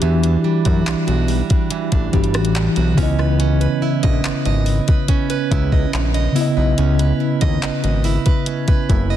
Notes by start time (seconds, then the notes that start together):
Already playing: E3 G3 D4 F#4 G4
0.02 E2 E3, closed hi-hat
0.23 D4, closed hi-hat
0.44 G3
0.65 F#2 F#4, kick, closed hi-hat
0.86 B1 D4, clap, closed hi-hat
1.07 B1 F#4, closed hi-hat
1.28 G3, open hi-hat
1.50 D4, kick, closed hi-hat
1.71 E3, closed hi-hat
1.92 A1 D4, kick, closed hi-hat
2.12 G1 E3 G3 D4 F#4, kick, closed hi-hat
2.16 G4
2.24 closed hi-hat
2.34 A1 F#4, cross-stick, closed hi-hat
2.45 closed hi-hat
2.55 D4, clap, closed hi-hat
2.76 B1 F#4, closed hi-hat
2.94 C#2 C#3 B3 C#4, kick, open hi-hat
3.00 E4 D#5
3.19 B4, cross-stick
3.40 C#4, closed hi-hat
3.61 B4, closed hi-hat
3.82 E4
4.03 A#1 D#5, kick, closed hi-hat
4.24 G#1 B4, clap, closed hi-hat
4.45 G#1 D#5, closed hi-hat
4.66 E4, open hi-hat
4.88 B4, kick, closed hi-hat
5.08 C#4, kick, closed hi-hat
5.30 B4, closed hi-hat
5.51 C#2 E4, kick, closed hi-hat
5.72 D#5, kick
5.93 A#1, clap, closed hi-hat
6.14 D#5, closed hi-hat
6.32 C#3 B3 E4, open hi-hat
6.38 E4 D#5
6.57 B1 B4
6.78 C#2 C#4, closed hi-hat
6.99 B4, closed hi-hat
7.20 E4
7.41 D#2 D#5, kick, closed hi-hat
7.62 G#1 B4, clap, closed hi-hat
7.84 G#1 D#5, closed hi-hat
8.04 E4, open hi-hat
8.26 B4, kick, closed hi-hat
8.46 C#4, closed hi-hat
8.68 B4, kick, closed hi-hat
8.89 F#1 E4, kick, closed hi-hat
9.10 D#5